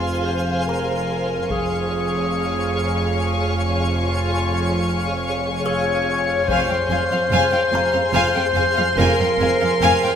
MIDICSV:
0, 0, Header, 1, 10, 480
1, 0, Start_track
1, 0, Key_signature, -4, "minor"
1, 0, Tempo, 832178
1, 868, Time_signature, 3, 2, 24, 8
1, 5857, End_track
2, 0, Start_track
2, 0, Title_t, "Violin section"
2, 0, Program_c, 0, 48
2, 0, Note_on_c, 0, 80, 36
2, 842, Note_off_c, 0, 80, 0
2, 868, Note_on_c, 0, 85, 42
2, 3717, Note_off_c, 0, 85, 0
2, 3741, Note_on_c, 0, 84, 51
2, 5857, Note_off_c, 0, 84, 0
2, 5857, End_track
3, 0, Start_track
3, 0, Title_t, "Music box"
3, 0, Program_c, 1, 10
3, 398, Note_on_c, 1, 82, 24
3, 1808, Note_off_c, 1, 82, 0
3, 3262, Note_on_c, 1, 68, 30
3, 3263, Note_on_c, 1, 88, 29
3, 4471, Note_on_c, 1, 82, 44
3, 4673, Note_off_c, 1, 68, 0
3, 4673, Note_off_c, 1, 88, 0
3, 5857, Note_off_c, 1, 82, 0
3, 5857, End_track
4, 0, Start_track
4, 0, Title_t, "Violin section"
4, 0, Program_c, 2, 48
4, 0, Note_on_c, 2, 77, 29
4, 0, Note_on_c, 2, 80, 30
4, 844, Note_off_c, 2, 80, 0
4, 846, Note_off_c, 2, 77, 0
4, 870, Note_on_c, 2, 80, 34
4, 872, Note_on_c, 2, 77, 33
4, 3718, Note_off_c, 2, 80, 0
4, 3719, Note_off_c, 2, 77, 0
4, 3746, Note_on_c, 2, 77, 56
4, 3746, Note_on_c, 2, 80, 51
4, 3853, Note_off_c, 2, 77, 0
4, 3854, Note_off_c, 2, 80, 0
4, 3860, Note_on_c, 2, 77, 36
4, 3860, Note_on_c, 2, 79, 35
4, 3906, Note_off_c, 2, 77, 0
4, 3906, Note_off_c, 2, 79, 0
4, 3984, Note_on_c, 2, 77, 40
4, 3985, Note_on_c, 2, 80, 40
4, 4030, Note_off_c, 2, 77, 0
4, 4032, Note_off_c, 2, 80, 0
4, 4104, Note_on_c, 2, 77, 41
4, 4105, Note_off_c, 2, 77, 0
4, 4105, Note_on_c, 2, 77, 47
4, 4151, Note_off_c, 2, 77, 0
4, 4218, Note_on_c, 2, 80, 56
4, 4219, Note_on_c, 2, 77, 60
4, 4327, Note_off_c, 2, 77, 0
4, 4329, Note_off_c, 2, 80, 0
4, 4334, Note_on_c, 2, 77, 46
4, 4337, Note_on_c, 2, 79, 47
4, 4381, Note_off_c, 2, 77, 0
4, 4383, Note_off_c, 2, 79, 0
4, 4456, Note_on_c, 2, 80, 44
4, 4458, Note_on_c, 2, 77, 45
4, 4502, Note_off_c, 2, 80, 0
4, 4504, Note_off_c, 2, 77, 0
4, 4571, Note_on_c, 2, 77, 41
4, 4618, Note_off_c, 2, 77, 0
4, 4691, Note_on_c, 2, 77, 64
4, 4692, Note_on_c, 2, 80, 60
4, 4806, Note_off_c, 2, 77, 0
4, 4806, Note_off_c, 2, 80, 0
4, 4813, Note_on_c, 2, 79, 48
4, 4814, Note_on_c, 2, 77, 53
4, 4859, Note_off_c, 2, 79, 0
4, 4860, Note_off_c, 2, 77, 0
4, 4933, Note_on_c, 2, 77, 52
4, 4933, Note_on_c, 2, 80, 47
4, 4979, Note_off_c, 2, 80, 0
4, 4980, Note_off_c, 2, 77, 0
4, 5055, Note_on_c, 2, 77, 59
4, 5057, Note_off_c, 2, 77, 0
4, 5057, Note_on_c, 2, 77, 52
4, 5103, Note_off_c, 2, 77, 0
4, 5181, Note_on_c, 2, 77, 52
4, 5185, Note_on_c, 2, 80, 63
4, 5293, Note_off_c, 2, 77, 0
4, 5296, Note_off_c, 2, 80, 0
4, 5305, Note_on_c, 2, 77, 40
4, 5305, Note_on_c, 2, 79, 40
4, 5351, Note_off_c, 2, 79, 0
4, 5352, Note_off_c, 2, 77, 0
4, 5424, Note_on_c, 2, 77, 46
4, 5424, Note_on_c, 2, 80, 45
4, 5470, Note_off_c, 2, 77, 0
4, 5470, Note_off_c, 2, 80, 0
4, 5541, Note_on_c, 2, 77, 45
4, 5542, Note_off_c, 2, 77, 0
4, 5542, Note_on_c, 2, 77, 48
4, 5588, Note_off_c, 2, 77, 0
4, 5664, Note_on_c, 2, 77, 62
4, 5664, Note_on_c, 2, 80, 75
4, 5776, Note_off_c, 2, 77, 0
4, 5776, Note_off_c, 2, 80, 0
4, 5785, Note_on_c, 2, 79, 49
4, 5786, Note_on_c, 2, 77, 48
4, 5831, Note_off_c, 2, 79, 0
4, 5832, Note_off_c, 2, 77, 0
4, 5857, End_track
5, 0, Start_track
5, 0, Title_t, "Synth texture"
5, 0, Program_c, 3, 99
5, 0, Note_on_c, 3, 68, 49
5, 0, Note_on_c, 3, 72, 51
5, 0, Note_on_c, 3, 77, 47
5, 848, Note_off_c, 3, 68, 0
5, 848, Note_off_c, 3, 72, 0
5, 850, Note_off_c, 3, 77, 0
5, 862, Note_on_c, 3, 68, 51
5, 865, Note_on_c, 3, 77, 47
5, 866, Note_on_c, 3, 73, 53
5, 3714, Note_off_c, 3, 68, 0
5, 3715, Note_off_c, 3, 77, 0
5, 3739, Note_off_c, 3, 73, 0
5, 3742, Note_on_c, 3, 72, 56
5, 3745, Note_on_c, 3, 68, 55
5, 3745, Note_on_c, 3, 77, 58
5, 5857, Note_off_c, 3, 68, 0
5, 5857, Note_off_c, 3, 72, 0
5, 5857, Note_off_c, 3, 77, 0
5, 5857, End_track
6, 0, Start_track
6, 0, Title_t, "Clarinet"
6, 0, Program_c, 4, 71
6, 0, Note_on_c, 4, 65, 46
6, 146, Note_on_c, 4, 72, 53
6, 154, Note_off_c, 4, 65, 0
6, 380, Note_off_c, 4, 72, 0
6, 384, Note_on_c, 4, 70, 51
6, 872, Note_on_c, 4, 68, 58
6, 880, Note_off_c, 4, 70, 0
6, 2148, Note_off_c, 4, 68, 0
6, 2305, Note_on_c, 4, 65, 52
6, 3003, Note_off_c, 4, 65, 0
6, 3265, Note_on_c, 4, 73, 70
6, 3738, Note_on_c, 4, 72, 76
6, 3747, Note_off_c, 4, 73, 0
6, 4690, Note_off_c, 4, 72, 0
6, 4694, Note_on_c, 4, 72, 83
6, 5178, Note_on_c, 4, 70, 84
6, 5186, Note_off_c, 4, 72, 0
6, 5857, Note_off_c, 4, 70, 0
6, 5857, End_track
7, 0, Start_track
7, 0, Title_t, "Cello section"
7, 0, Program_c, 5, 48
7, 0, Note_on_c, 5, 41, 35
7, 843, Note_off_c, 5, 41, 0
7, 871, Note_on_c, 5, 41, 41
7, 3718, Note_off_c, 5, 41, 0
7, 3743, Note_on_c, 5, 41, 62
7, 3789, Note_off_c, 5, 41, 0
7, 3861, Note_on_c, 5, 41, 41
7, 3907, Note_off_c, 5, 41, 0
7, 3977, Note_on_c, 5, 41, 51
7, 4023, Note_off_c, 5, 41, 0
7, 4100, Note_on_c, 5, 41, 43
7, 4146, Note_off_c, 5, 41, 0
7, 4217, Note_on_c, 5, 41, 69
7, 4263, Note_off_c, 5, 41, 0
7, 4338, Note_on_c, 5, 41, 44
7, 4384, Note_off_c, 5, 41, 0
7, 4458, Note_on_c, 5, 41, 52
7, 4504, Note_off_c, 5, 41, 0
7, 4578, Note_on_c, 5, 41, 47
7, 4624, Note_off_c, 5, 41, 0
7, 4701, Note_on_c, 5, 41, 61
7, 4747, Note_off_c, 5, 41, 0
7, 4820, Note_on_c, 5, 41, 43
7, 4866, Note_off_c, 5, 41, 0
7, 4940, Note_on_c, 5, 41, 44
7, 4986, Note_off_c, 5, 41, 0
7, 5062, Note_on_c, 5, 41, 50
7, 5109, Note_off_c, 5, 41, 0
7, 5183, Note_on_c, 5, 41, 73
7, 5229, Note_off_c, 5, 41, 0
7, 5304, Note_on_c, 5, 41, 51
7, 5350, Note_off_c, 5, 41, 0
7, 5427, Note_on_c, 5, 41, 51
7, 5473, Note_off_c, 5, 41, 0
7, 5548, Note_on_c, 5, 41, 52
7, 5594, Note_off_c, 5, 41, 0
7, 5668, Note_on_c, 5, 41, 71
7, 5714, Note_off_c, 5, 41, 0
7, 5789, Note_on_c, 5, 41, 43
7, 5836, Note_off_c, 5, 41, 0
7, 5857, End_track
8, 0, Start_track
8, 0, Title_t, "Synth drone"
8, 0, Program_c, 6, 95
8, 0, Note_on_c, 6, 41, 61
8, 841, Note_off_c, 6, 41, 0
8, 870, Note_on_c, 6, 41, 62
8, 3718, Note_off_c, 6, 41, 0
8, 3745, Note_on_c, 6, 41, 63
8, 5857, Note_off_c, 6, 41, 0
8, 5857, End_track
9, 0, Start_track
9, 0, Title_t, "Double bass section"
9, 0, Program_c, 7, 48
9, 0, Note_on_c, 7, 29, 37
9, 845, Note_off_c, 7, 29, 0
9, 872, Note_on_c, 7, 29, 41
9, 3719, Note_off_c, 7, 29, 0
9, 3745, Note_on_c, 7, 29, 60
9, 3791, Note_off_c, 7, 29, 0
9, 3982, Note_on_c, 7, 29, 44
9, 4028, Note_off_c, 7, 29, 0
9, 4216, Note_on_c, 7, 29, 61
9, 4263, Note_off_c, 7, 29, 0
9, 4456, Note_on_c, 7, 29, 50
9, 4503, Note_off_c, 7, 29, 0
9, 4696, Note_on_c, 7, 29, 64
9, 4743, Note_off_c, 7, 29, 0
9, 4938, Note_on_c, 7, 29, 47
9, 4984, Note_off_c, 7, 29, 0
9, 5179, Note_on_c, 7, 29, 72
9, 5225, Note_off_c, 7, 29, 0
9, 5422, Note_on_c, 7, 29, 50
9, 5468, Note_off_c, 7, 29, 0
9, 5664, Note_on_c, 7, 29, 70
9, 5710, Note_off_c, 7, 29, 0
9, 5857, End_track
10, 0, Start_track
10, 0, Title_t, "Taiko and cinematic ensemble drums"
10, 866, Note_on_c, 9, 41, 45
10, 924, Note_off_c, 9, 41, 0
10, 3740, Note_on_c, 9, 41, 48
10, 3797, Note_off_c, 9, 41, 0
10, 5857, End_track
0, 0, End_of_file